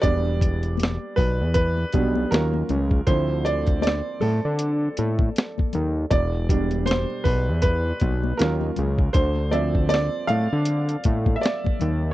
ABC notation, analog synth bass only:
X:1
M:4/4
L:1/16
Q:"Swing 16ths" 1/4=79
K:Ddor
V:1 name="Analog synth bass" clef=bass
E,,,4- E,,, z B,,, E,,3 B,,,2 _E,,2 _D,,2 | D,,4- D,, z A,, D,3 A,,2 z2 _E,,2 | E,,,4- E,,, z B,,, E,,3 B,,,2 _E,,2 _D,,2 | D,,4- D,, z A,, D,3 A,,2 z2 _E,,2 |]